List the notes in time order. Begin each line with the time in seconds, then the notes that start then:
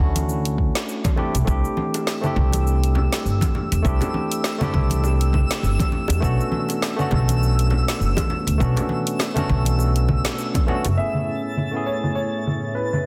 Already playing: A3 C#4 D4 E4 F#4
0.00 D2
0.15 closed hi-hat, high conga, cabasa
0.29 cabasa
0.45 closed hi-hat, cabasa
0.58 kick
0.75 snare, closed hi-hat, cabasa
0.89 cabasa
1.04 kick, closed hi-hat, high conga, cabasa
1.16 A3 C4 D4 E4 G4, low conga
1.34 C2, closed hi-hat, cabasa
1.45 C2 A3 C4 D4 E4 E6, kick, high bongo, cabasa
1.50 G4
1.65 cabasa
1.77 high conga
1.94 closed hi-hat, high bongo, cabasa
2.07 snare, cabasa
2.21 A3 C4 D4 E4, low conga, cabasa
2.26 G4
2.36 C2, kick, low conga
2.53 closed hi-hat, high bongo, high conga, cabasa
2.67 cabasa
2.84 closed hi-hat, cabasa
2.95 high bongo, low conga
3.13 snare, closed hi-hat, cabasa
3.25 G1, cabasa
3.41 kick, closed hi-hat, high conga, cabasa
3.55 high bongo, low conga
3.72 E2, closed hi-hat, cabasa
3.82 C2 A3 C4 D4 E4, kick, cabasa
3.87 G4
4.01 closed hi-hat, high bongo, low conga, cabasa
4.14 high conga
4.32 closed hi-hat, cabasa
4.44 snare, cabasa
4.58 A3 C4 D4 E4, high bongo, low conga, cabasa
4.63 G4
4.74 C2, kick, low conga
4.90 closed hi-hat, high conga, cabasa
5.04 high bongo, cabasa
5.21 closed hi-hat, cabasa
5.33 kick, low conga
5.51 snare, closed hi-hat, cabasa
5.63 G1, high bongo, cabasa
5.79 kick, closed hi-hat, high conga, cabasa
5.92 low conga
6.08 E2, closed hi-hat, high bongo, cabasa
6.20 B1 A3 B3 C#4 D4, kick, cabasa
6.25 F#4
6.40 cabasa
6.52 high conga
6.69 closed hi-hat, high bongo, cabasa
6.82 snare, cabasa
6.96 A3 B3 C#4 D4, low conga, cabasa
7.01 F#4
7.11 B1, kick, high bongo, low conga
7.28 closed hi-hat, high conga, cabasa
7.43 cabasa
7.59 closed hi-hat, cabasa
7.70 high bongo, low conga
7.88 snare, closed hi-hat, cabasa
8.00 F#1, cabasa
8.17 kick, closed hi-hat, high bongo, high conga, cabasa
8.30 low conga
8.47 D2, closed hi-hat, cabasa
8.58 B1 A3 B3 C#4 D4, kick, cabasa
8.63 F#4
8.77 closed hi-hat, high bongo, low conga, cabasa
8.89 high conga
9.07 closed hi-hat, cabasa
9.19 snare, high bongo, cabasa
9.34 A3 B3 C#4 D4, closed hi-hat, low conga, cabasa
9.39 F#4
9.49 B1, kick, low conga
9.65 closed hi-hat, high conga, cabasa
9.79 high bongo, cabasa
9.96 closed hi-hat, cabasa
10.09 kick, low conga
10.24 snare, closed hi-hat, high bongo, cabasa
10.38 cabasa
10.54 kick, closed hi-hat, high conga, cabasa
10.67 A3 B3 C#4 D4 F#4, low conga
10.85 F#1, closed hi-hat, high bongo, cabasa
10.95 A2 A3 B3 C#4 E4 E5 A6
11.00 G#4
11.14 low conga, cabasa
11.45 cabasa
11.57 low conga, cabasa
11.71 A3 B3 C#4 E4, cabasa
11.77 G#4
11.86 C#5
12.04 low conga, cabasa
12.15 C#5, cabasa
12.47 low conga
12.64 cabasa
12.75 B4, cabasa
12.93 low conga, cabasa